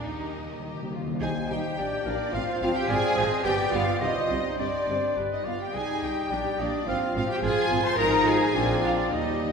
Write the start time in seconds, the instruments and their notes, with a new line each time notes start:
0.04 double bass section D#2, timpani D#3, cello section D#3, viola section D#4, violin section G4 A#4 D#5
0.13 timpani D#3
0.21 timpani D#3
0.29 timpani D#3
0.37 timpani D#3
0.45 timpani D#3
0.52 timpani D#3
0.60 timpani D#3, violin section G4
0.67 timpani D#3
0.74 timpani D#3
0.83 timpani D#3
0.90 timpani D#3, violin section F4
0.98 timpani D#3
1.06 timpani D#3
1.14 timpani D#3
1.21 double bass section C2, bassoon D#4, viola section D#4 G4, cello section G#4, clarinet C5, oboe G5, flute G#5, violin section G#5
1.49 double bass section C2, french horn section G3 D#4, viola section D#4 G4, cello section G4, flute G5, violin section G5
1.77 double bass section A#1, bassoon D4, viola section D4 G4, clarinet D5, oboe G5
2.05 double bass section A#1, french horn section A#3 D4, cello section D4, viola section D4 G4, clarinet A#4, violin section D5, flute D5
2.33 double bass section G#1, bassoon C4, viola section C4 F4, cello section F4, clarinet C5, flute F5, violin section F5, oboe F5
2.61 double bass section G#1, french horn section F3 C4, viola section C4 F4, cello section F4, flute F5, violin section F5
2.75 cello section G4, violin section G5, flute G5
2.88 double bass section G#1, bassoon C4, viola section C4 F4, cello section G#4, clarinet D5, oboe F5, violin section G#5, flute G#5
3.17 double bass section G#1, french horn section F3 C4, viola section C4 F4, clarinet C5, oboe D#5
3.44 double bass section G1, bassoon B3, viola section B3 G4, cello section G4, clarinet D5, oboe D5, violin section G5, flute G5
3.72 double bass section G1, french horn section G3 B3, viola section B3 G4, cello section F4, violin section F5, flute F5
4.00 double bass section C2, bassoon G3, viola section C4 G4, cello section D#4, oboe C5, violin section D#5, clarinet D#5, flute D#5
4.10 cello section F4
4.18 cello section D#4
4.27 double bass section C2, french horn section G3 C4, viola section C4 G4, cello section F4, clarinet C5
4.36 cello section D#4
4.57 double bass section G1, bassoon G3, viola section C4 G4, cello section D4, oboe C5, violin section D5, flute D5, clarinet D5
4.87 double bass section G1, french horn section G3 C4, viola section C4 G4
5.16 double bass section G1, bassoon G3, viola section B3 G4, oboe B4
5.31 cello section D#4, violin section D#5, flute D#5
5.45 double bass section G1, french horn section G3 B3, viola section B3 G4, cello section F4, oboe D5, violin section F5, flute F5
5.60 cello section G4, violin section G5, flute G5
5.72 double bass section C2, bassoon G3, french horn section G3 D#4, viola section D#4 G4, clarinet D#4, cello section G#4, oboe D#5, flute G#5, violin section G#5
6.02 double bass section C2, viola section D#4 G4, cello section G4, flute G5, violin section G5
6.30 double bass section A#1, bassoon G3, viola section D4 G4, clarinet D4, french horn section D4, oboe D5
6.59 double bass section A#1, clarinet A#3, cello section D4, viola section D4 G4, flute D5, violin section D5, oboe D#5
6.87 double bass section G#1, bassoon F3, french horn section F3 F4, viola section C4 F4, clarinet C4, cello section F4, flute F5, violin section F5, oboe F5
7.13 double bass section G#1, viola section C4 F4, cello section F4, flute F5, violin section F5
7.17 violin section F5
7.29 cello section G4, flute G5, violin section G5
7.42 double bass section G#1, bassoon F3, viola section C4 F4, clarinet F4, cello section G#4, oboe F5, flute G#5, violin section G#5
7.71 double bass section G#1, viola section C4 F4
7.83 cello section C5, flute C6, violin section C6
7.97 double bass section G#1, bassoon F3, french horn section F3 D#4, viola section D#4 F4, clarinet D#4, cello section A#4, oboe D#5, flute A#5, violin section A#5
8.25 cello section G#4, flute G#5, violin section G#5
8.53 double bass section A#1, bassoon F3, french horn section F3 D4, clarinet C4, viola section D4 F4, oboe D5
8.82 cello section F4, violin section F5, flute F5
8.97 cello section D4, violin section D5, flute D5
9.11 double bass section D#2, timpani D#3, bassoon G3, french horn section G3 D#4, clarinet A#3, cello section D#4, viola section D#4 G4, violin section D#5, flute D#5, oboe D#5
9.20 timpani D#3
9.28 timpani D#3
9.35 timpani D#3
9.44 timpani D#3